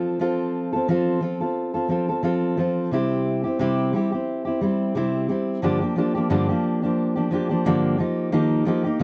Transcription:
steel-string acoustic guitar
Already playing: F3 C4 F4 A4
0.19 F3 C4 F4 A4
0.73 C4 F4 A4
0.88 F3 C4 F4 A4
1.21 F3 C4 F4 A4
1.40 C4 F4 A4
1.74 C4 F4 A4
1.88 F3 C4 F4 A4
2.09 C4 F4 A4
2.23 F3 C4 F4 A4
2.57 F3 C4 F4 A4
2.91 C3 G3 C4 E4 G4
3.44 C4 E4 G4
3.59 C3 G3 C4 E4 G4
3.93 G3 C4 E4 G4
4.12 C4 E4 G4
4.45 C4 E4 G4
4.61 G3 C4 E4 G4
4.95 C3 G3 C4 E4 G4
5.28 G3 C4 E4 G4
5.62 G2 D3 F3 A#3 D4 G4
5.81 F3 A#3 D4 G4
5.96 F3 A#3 D4 G4
6.15 F3 A#3 D4 G4
6.30 G2 D3 F3 A#3 D4 G4
6.48 F3 A#3 D4 G4
6.82 F3 A#3 D4 G4
7.16 F3 A#3 D4 G4
7.31 F3 A#3 D4 G4
7.49 F3 A#3 D4 G4
7.65 G2 D3 F3 A#3 D4 G4
7.98 F3 A#3 D#4 G4
8.32 D#3 F3 A#3 D#4 G4
8.65 F3 A#3 D#4 G4
8.84 A#3 D#4 G4
8.99 D#3

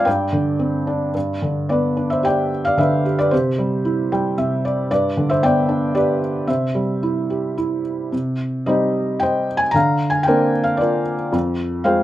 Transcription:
felt piano
0.05 G2 D5 G5
0.33 D3
0.59 C4
0.87 D4
1.15 G2
1.42 D3
1.69 B3 B4 D5
1.97 D4
2.10 C5 E5
2.23 G4 D5 G5
2.65 D5 F5
2.78 D3 B4 E5
3.05 G4
3.19 B4 D5
3.31 C3 G4 C5
3.58 G3
3.85 E4
4.12 G3 G5
4.38 C3 E5
4.65 D5
4.91 G2 B4 D5
5.17 D3
5.29 C5 E5
5.43 B3 D5 G5
5.69 D4
5.95 G4 B4 D5
6.47 C3 C5 E5
6.75 G3
7.03 E4
7.30 G4
7.57 E4
8.12 C3
8.66 G3 C4 D#4 G4 C5 D#5
9.20 C5 D#5 G5
9.57 G#5
9.71 D3 A#5
9.76 F5
10.10 G#5
10.23 A#3 G5
10.27 C4 D4 A#4 C5
10.64 F5
10.77 F4 A#4 D5
11.32 F2
11.84 G#3 F4 G#4 C5 F5 G5

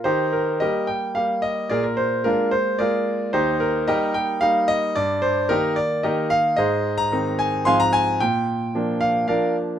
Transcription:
grand piano
0.04 D#3 D#4 G4 C5
0.33 A#4
0.60 G3 A#3 G4 A#4 D#5
0.87 G5
1.15 G3 A#3 G4 F5
1.42 D#5
1.70 A#2 G#4 A#4 D5
1.84 A#4
1.97 C5
2.24 G#3 A#3 D4 F4 A#4
2.51 C5
2.79 G#3 A#3 F4 G#4 A#4 D5
3.33 D#2 D#4 G4 C5
3.60 A#4
3.88 G3 A#3 D#4 G4 A#4 D#5
4.14 G5
4.41 G3 A#3 D#4 F5
4.68 D#5
4.96 G2 D5
5.22 C5
5.49 D#3 A#3 D#4 G4 A#4
5.76 D5
6.03 D#3 A#3 D#4 G4 A#4 D#5
6.30 F5
6.56 G#2 G#4 C5 D#5
6.98 A#5
7.12 D#3 C4 D#4
7.39 G#5
7.65 G#2 F3 C4 F5 G#5 C6
7.80 A#5
7.93 G#5
8.20 A#2 G5
8.75 F3 A#3 D4
9.01 F5
9.28 F3 A#3 D4 A#4 D5 F5

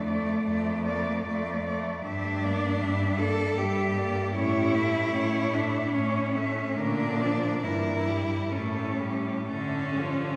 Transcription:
cello
Already playing: F2 A3
0.07 A3 D5
0.44 F2 A3 D5
0.84 A3 A#3 D5
1.25 F2 A3 D5
1.66 A3 D5
2.04 G2 G3 D4 E5
2.43 A#3 D5
2.81 G2 G3 E5
3.19 A#3 A4 D5
3.57 G2 G3 G4 E5
3.97 A#3 D5
4.35 A2 C#4 E4 C#5
4.75 A3 E5
5.14 A2 C#4 C#5
5.54 A3 D4 E5
5.93 A2 C#4 C#5
6.35 A3 C#4 E5
6.77 A#2 D3 D4 A#4
7.20 F3 D5
7.63 G2 E3 E4 A#4
8.08 G3 G4
8.52 A2 A3 C#4 A4
9.00 G3 G4
9.47 D3 A3 C#4 A4
9.99 F3 F4

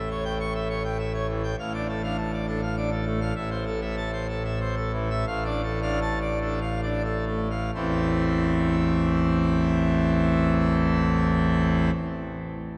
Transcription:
pipe organ
Already playing: A1 A2
0.11 C#5
0.25 G5
0.40 C#6
0.55 E5
0.70 C#5
0.84 G5
0.99 E5
1.14 C#5
1.29 E3
1.43 G5
1.59 A1 A2 F5
1.74 D4 D5
1.89 A4
2.03 D4 F5
2.18 A5
2.33 D5
2.48 D4 A4
2.62 F5
2.77 D4 D5
2.92 A4
3.06 A3
3.21 F5
3.36 A1 A2 E5
3.51 C5
3.66 A4
3.82 E5
3.97 A5
4.13 C5
4.29 A4
4.45 E5
4.60 C5
4.77 A4
4.93 E3
5.10 E5
5.27 A1 A2 F5
5.45 D4 D5
5.63 A4
5.82 D4 F5
6.02 A5
6.21 D5
6.41 D4 A4
6.61 F5
6.83 D4 D5
7.04 A4
7.27 A3
7.51 F5
7.74 A1 E2 E3 A3 C4 E4

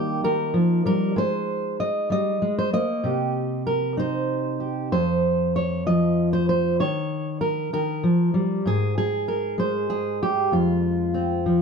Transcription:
steel-string acoustic guitar
Already playing: D#3 G3 A#3 D#4 G4
0.24 D#3 A#4
0.54 F3
0.85 G3 A#4
1.16 G#3 C5
1.80 D#5
2.10 G3 D#5
2.42 G#3
2.58 C5
2.73 A#3 D#5
3.04 C3 G4
3.67 A#4
3.97 D#4 C5
4.60 G4
4.92 F2 C5
5.56 C#5
5.86 F3 D#5
6.33 C5
6.49 C5
6.80 D#3 C#5
7.41 A#4
7.73 D#3 A#4
8.04 F3
8.34 G3
8.65 G#2 G#4
8.98 G#4
9.28 A#4
9.58 G#3 C5
9.90 G#4
10.23 G4
10.52 F2 F4
11.14 C4
11.46 F3

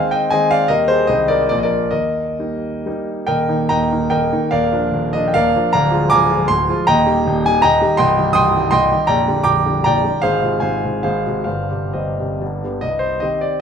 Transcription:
grand piano
Already playing: D#3 G#3 C4 C5 F5
0.11 D#5 G5
0.30 D#3 G#3 C4 D#5 G#5
0.51 D5 F5
0.68 D#2 D#3 G3 A#3 A#4 D#5
0.88 G#4 C5
1.07 C2 D#3 G#3 C4 C5 D#5
1.28 A#4 D5
1.49 A#1 F3 A#3 F4 D5
1.58 D#5
1.63 A#4 D5
1.91 D#2 A#4 D#5
2.39 G3 A#3 D#4
2.86 G3 A#3 D#4
3.27 D#1 D#2 A#4 D#5 G5
3.48 D#3 A#3 D#4
3.69 D#1 D#2 D#5 G5 A#5
3.92 D#3 A#3 D#4
4.10 D#1 D#2 A#4 D#5 G5
4.33 D#3 A#3 D#4
4.51 D#1 D#2 A#4 D5 F5
4.72 F3 A#3 D4
4.92 D#1 D#2
5.13 F3 A#3 D4 D#5
5.28 G5
5.34 D#1 D#2 A#4 D5 F5
5.56 F3 A#3 D4
5.73 D1 D2 D5 F5 A#5
5.91 F3 G#3 F4
6.10 D1 D2 G#5 A#5 D6
6.30 F3 G#3 F4
6.48 D1 D2 C6
6.69 F3 G#3 F4
6.87 D#1 D#2 D#5 G5 A#5
7.06 D#3 G3 G4
7.27 D#1 D#2
7.46 D#3 G3 G4 G#5
7.62 D#1 D#2 D#5 G5 A#5
7.81 D#3 G3 G4
7.97 C1 C2 D#5 G5 C6
8.17 D#3 G3 G4
8.33 C1 C2 G5 C6 D#6
8.55 D#3 G3 G4
8.71 C1 C2 D#5 G5 C6
8.92 D#3 G3 G4
9.07 A#0 A#1 D5 G5 A#5
9.27 D3 G3 G4
9.44 A#0 A#1 G5 A#5 D6
9.66 D3 G3 G4
9.84 A#0 A#1 D5 G5 A#5
10.04 D3 G3 G4
10.22 G#1 G#2 G#4 C5 F5
10.42 C3 G#3 F4
10.60 G#1 G#2 C5 F5 G#5
10.84 C3 G#3 F4
11.03 G#1 G#2 G#4 C5 F5
11.26 C3 G#3 F#4
11.44 G1 G2 C5 F5
11.70 C3 C4 G4
11.93 G1 G2 G4 C5 D#5
12.19 C3 C4 G4
12.41 G1 G2
12.64 D3 B3 G4
12.81 C2 D#5
12.99 C5
13.20 D#3 C4 G4 D#5
13.41 D5

